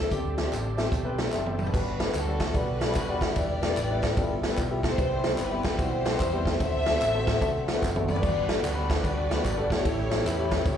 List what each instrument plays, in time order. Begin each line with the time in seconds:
Already playing: tonewheel organ G3 C#4 A4, electric slide guitar A4
0.11 fingered electric bass D2, upright piano D3 C4 G4 A4 D5, tonewheel organ C4 D4, electric slide guitar G4, kick, closed hi-hat, tambourine
0.38 snare, closed hi-hat, tambourine
0.44 upright piano C4 G4 A4 D5
0.52 fingered electric bass A1, clap, closed hi-hat, tambourine
0.77 upright piano C4 G4 A4 E5, snare, closed hi-hat, tambourine
0.92 fingered electric bass B1, kick, closed hi-hat, tambourine
1.04 upright piano C4 G4 A4 B4
1.18 snare, closed hi-hat, tambourine
1.32 fingered electric bass F#1, upright piano C4 G4 A4 E5, snare, clap, tambourine
1.46 high tom
1.59 string section D4 F#4 B4, mid tom, tambourine
1.66 floor tom
1.73 fingered electric bass G1, upright piano G2 G3 B3 D4 F#4 B4, kick, crash, tambourine
2.00 snare, ride, tambourine
2.06 upright piano G3 B3 D4 F#4 B4
2.14 fingered electric bass D2, string section D4 F#4 A4, clap, ride, tambourine
2.27 upright piano G3 B3 D4 F#4 A4
2.40 kick, snare, clap, ride, tambourine
2.54 fingered electric bass B1, upright piano G3 B3 D4 F#4 D5, string section D4 F#4 B4, kick, ride, tambourine
2.81 snare, ride, tambourine
2.88 upright piano G3 B3 D4 F#4 A4
2.95 kick, clap, ride, tambourine
3.09 upright piano G3 B3 D4 F#4 D5
3.21 kick, snare, ride, tambourine
3.36 fingered electric bass E1, upright piano E3 G3 B3 D4 E4 B4, string section G4 B4 D5, kick, ride, tambourine
3.62 snare, ride, tambourine
3.70 upright piano G3 B3 D4 E4 D5
3.77 fingered electric bass A1, clap, ride, tambourine
3.91 upright piano G3 B3 D4 E4 B4
4.03 kick, snare, clap, ride, tambourine
4.17 fingered electric bass G1, upright piano G2 G3 B3 E4 F4 A4, kick, ride, tambourine
4.43 snare, ride, tambourine
4.51 upright piano G3 B3 E4 F4 B4
4.57 fingered electric bass B1, kick, clap, ride, tambourine
4.70 upright piano G3 B3 E4 F4 G4
4.83 string section E4 G4 C5, kick, snare, ride, tambourine
4.98 fingered electric bass C2, upright piano C3 G3 B3 C4 E4 B4, kick, ride, tambourine
5.24 snare, ride, tambourine
5.31 upright piano G3 B3 C4 E4 C5
5.38 fingered electric bass G1, string section E4 G4 B4, clap, ride, tambourine
5.51 upright piano G3 B3 C4 E4 G4
5.64 kick, snare, clap, ride, tambourine
5.79 fingered electric bass B1, upright piano G3 B3 C4 E4 F#4, string section E4 G4 C5, kick, ride, tambourine
6.05 snare, ride, tambourine
6.12 upright piano G3 B3 C4 E4 B4
6.20 fingered electric bass E2, kick, clap, ride, tambourine
6.33 upright piano G3 B3 C4 E4 G4
6.46 kick, snare, ride, tambourine
6.60 fingered electric bass D2, upright piano D3 A3 C4 D4 F#4 C5, string section A4 C5 E5, kick, ride, tambourine
6.86 snare, ride, tambourine
6.94 upright piano A3 C4 D4 F#4 C5
7.01 fingered electric bass A1, clap, ride, tambourine
7.14 upright piano A3 C4 D4 F#4 C5
7.27 kick, snare, clap, ride, tambourine
7.41 fingered electric bass C2, upright piano A3 C4 D4 F#4 A4, kick, ride, tambourine
7.68 snare, ride, tambourine
7.75 upright piano A3 C4 D4 F#4 B4
7.82 fingered electric bass F#1, kick, snare, clap, tambourine
7.95 upright piano A3 C4 D4 F#4 A4, high tom
8.08 string section F#4 B4 D5, mid tom, tambourine
8.16 floor tom
8.22 fingered electric bass G1, upright piano G2 G3 B3 D4 F#4 B4, tonewheel organ G3 B3 D4 F#4, kick, tambourine, crash
8.49 snare, ride, tambourine
8.55 upright piano G3 B3 D4 F#4 A4
8.63 fingered electric bass D2, string section D4 F#4 B4, clap, ride, tambourine
8.75 upright piano G3 B3 D4 F#4 B4
8.90 kick, snare, clap, ride, tambourine
9.03 fingered electric bass D2, upright piano G3 B3 D4 F#4 B4, string section F#4 B4 D5, kick, ride, tambourine
9.31 snare, ride, tambourine
9.37 upright piano G3 B3 D4 F#4 B4
9.45 fingered electric bass G#1, kick, clap, ride, tambourine
9.58 upright piano G3 B3 D4 F#4 A4
9.70 string section E4 G4 C#5, kick, snare, ride, tambourine
9.84 fingered electric bass A1, upright piano A2 A3 C#4 E4 G4 C#5, tonewheel organ E3 A3 C#4 G4, kick, ride, tambourine
10.11 snare, ride, tambourine
10.19 upright piano A3 C#4 E4 G4 C#5
10.25 fingered electric bass E2, string section E4 G4 B4, clap, ride, tambourine
10.39 upright piano A3 C#4 E4 G4 C#5
10.52 kick, snare, clap, ride, tambourine
10.66 fingered electric bass C#2, upright piano A3 C#4 E4 G4 C#5, string section E4 G4 C#5, kick, ride, tambourine